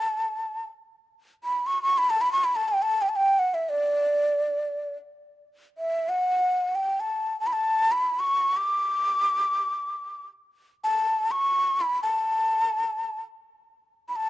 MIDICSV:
0, 0, Header, 1, 2, 480
1, 0, Start_track
1, 0, Tempo, 500000
1, 13723, End_track
2, 0, Start_track
2, 0, Title_t, "Ney"
2, 0, Program_c, 0, 77
2, 0, Note_on_c, 0, 81, 77
2, 612, Note_off_c, 0, 81, 0
2, 1382, Note_on_c, 0, 83, 78
2, 1598, Note_on_c, 0, 85, 84
2, 1612, Note_off_c, 0, 83, 0
2, 1746, Note_off_c, 0, 85, 0
2, 1752, Note_on_c, 0, 85, 89
2, 1900, Note_on_c, 0, 83, 96
2, 1914, Note_off_c, 0, 85, 0
2, 2015, Note_on_c, 0, 81, 93
2, 2030, Note_off_c, 0, 83, 0
2, 2124, Note_on_c, 0, 83, 89
2, 2138, Note_off_c, 0, 81, 0
2, 2225, Note_off_c, 0, 83, 0
2, 2231, Note_on_c, 0, 85, 82
2, 2344, Note_on_c, 0, 83, 74
2, 2359, Note_off_c, 0, 85, 0
2, 2455, Note_on_c, 0, 81, 77
2, 2469, Note_off_c, 0, 83, 0
2, 2577, Note_on_c, 0, 79, 78
2, 2592, Note_off_c, 0, 81, 0
2, 2709, Note_on_c, 0, 81, 87
2, 2723, Note_off_c, 0, 79, 0
2, 2896, Note_on_c, 0, 79, 78
2, 2911, Note_off_c, 0, 81, 0
2, 2965, Note_on_c, 0, 81, 58
2, 2979, Note_off_c, 0, 79, 0
2, 3032, Note_on_c, 0, 79, 80
2, 3047, Note_off_c, 0, 81, 0
2, 3253, Note_on_c, 0, 78, 73
2, 3268, Note_off_c, 0, 79, 0
2, 3400, Note_on_c, 0, 76, 69
2, 3415, Note_off_c, 0, 78, 0
2, 3545, Note_on_c, 0, 74, 75
2, 3559, Note_off_c, 0, 76, 0
2, 4765, Note_off_c, 0, 74, 0
2, 5548, Note_on_c, 0, 76, 63
2, 5846, Note_on_c, 0, 78, 71
2, 5861, Note_off_c, 0, 76, 0
2, 6483, Note_on_c, 0, 79, 70
2, 6498, Note_off_c, 0, 78, 0
2, 6721, Note_on_c, 0, 81, 69
2, 6735, Note_off_c, 0, 79, 0
2, 7098, Note_off_c, 0, 81, 0
2, 7104, Note_on_c, 0, 81, 86
2, 7170, Note_on_c, 0, 83, 70
2, 7185, Note_off_c, 0, 81, 0
2, 7227, Note_on_c, 0, 81, 78
2, 7241, Note_off_c, 0, 83, 0
2, 7601, Note_on_c, 0, 83, 77
2, 7616, Note_off_c, 0, 81, 0
2, 7868, Note_on_c, 0, 85, 84
2, 7883, Note_off_c, 0, 83, 0
2, 8227, Note_on_c, 0, 86, 84
2, 8242, Note_off_c, 0, 85, 0
2, 9839, Note_off_c, 0, 86, 0
2, 10405, Note_on_c, 0, 81, 74
2, 10859, Note_on_c, 0, 85, 85
2, 10874, Note_off_c, 0, 81, 0
2, 11337, Note_on_c, 0, 83, 81
2, 11351, Note_off_c, 0, 85, 0
2, 11538, Note_off_c, 0, 83, 0
2, 11545, Note_on_c, 0, 81, 68
2, 12659, Note_off_c, 0, 81, 0
2, 13523, Note_on_c, 0, 83, 57
2, 13591, Note_on_c, 0, 81, 73
2, 13606, Note_off_c, 0, 83, 0
2, 13723, Note_off_c, 0, 81, 0
2, 13723, End_track
0, 0, End_of_file